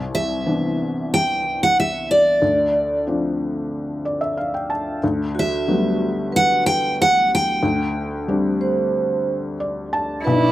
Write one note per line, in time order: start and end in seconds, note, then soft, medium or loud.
0.00 2.39 C2 medium
0.15 1.13 E5 medium
0.46 2.38 E3 soft
0.46 2.38 B3 soft
0.46 2.38 C4 soft
0.46 2.39 D4 soft
1.14 1.63 G5 medium
1.63 1.79 F#5 medium
1.80 2.09 E5 medium
2.11 3.04 D5 medium
2.42 4.98 D2 medium
3.07 4.98 F3 soft
3.07 4.98 C4 soft
3.07 4.99 D4 soft
4.05 4.20 D5 medium
4.21 4.36 E5 medium
4.37 4.53 F5 medium
4.54 4.69 G5 medium
4.70 5.00 A5 medium
5.04 7.60 D2 medium
5.35 6.03 F#4 medium
5.39 6.31 E5 medium
5.68 7.60 F#3 soft
5.68 7.59 G3 soft
5.68 7.59 A3 soft
5.68 7.59 B3 soft
6.32 7.01 B4 soft
6.32 6.66 F#5 medium
6.66 6.96 G5 medium
7.02 7.30 F#5 medium
7.35 9.57 G5 medium
7.63 10.21 D2 medium
8.28 10.21 G3 soft
8.28 10.21 C4 soft
8.28 10.21 D4 soft
8.61 9.30 C5 soft
9.60 9.90 D5 medium
9.93 10.23 A5 medium
10.25 10.52 B1 medium
10.25 10.52 B2 medium
10.25 10.52 F#3 medium
10.25 10.52 D4 medium
10.25 10.52 E4 medium
10.25 10.52 F#4 medium
10.25 10.52 B4 medium
10.25 10.52 D5 medium